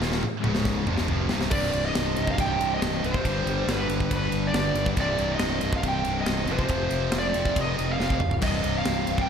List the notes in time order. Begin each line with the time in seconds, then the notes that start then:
0.00 D#1 D#2 A#2 D#3, snare
0.12 snare
0.23 mid tom
0.40 C#2 G#2 C#3, mid tom
0.44 C#1 C#2 G#2 C#3
0.55 snare
0.65 kick, snare
0.86 C1 C2 G2 C3, mid tom
0.98 snare
1.07 F1 F2 C3 F3, floor tom
1.28 C1 C2 G2 C3, snare
1.41 snare
1.51 C1 C2 G2 C3 D5, kick, crash
1.73 C1, ride
1.85 D#5
1.95 C1, snare, ride
2.16 C1, ride
2.27 F5, kick
2.37 C1 C2 G2 C3 G5, kick, ride
2.61 C1, ride
2.75 D#5
2.82 C1, snare, ride
3.03 C1 C2 G2 C3 C5, ride
3.14 kick
3.23 G1 G2 D3 G3, kick, ride
3.46 G1, ride
3.67 G1, snare, ride
3.72 B4
3.89 G1, ride
4.00 kick
4.10 G1 G2 D3 G3, kick, ride
4.17 B4
4.32 G1, ride
4.47 D5
4.53 G1 D5, snare, ride
4.75 G1 G2 D3 G3, ride
4.86 kick
4.95 C1 C2 G2 C3, kick, ride
5.01 D5
5.18 C1, ride
5.34 D#5
5.39 C1, snare, ride
5.61 C1, ride
5.73 F5, kick
5.83 C1 C2 G2 C3, kick, ride
5.89 G5
6.05 C1, ride
6.20 D#5
6.26 C1, snare, ride
6.47 F1 F2 C3 F3, ride
6.52 C5
6.59 kick
6.69 F1, kick, ride
6.91 F1, ride
7.12 F1, snare, ride
7.19 D5
7.34 F1 F2 C3 F3, ride
7.45 kick
7.56 F1, kick, ride
7.61 D#5
7.79 F1, ride
7.92 F5
7.98 F1 F2 C3 F3, snare
8.03 F5
8.10 kick
8.20 D1, mid tom
8.31 floor tom
8.42 C1 C2 G2 C3 D#5, kick, crash, splash
8.64 C1, ride
8.78 F5
8.85 C1, snare, ride
9.07 C1, ride
9.18 G5, kick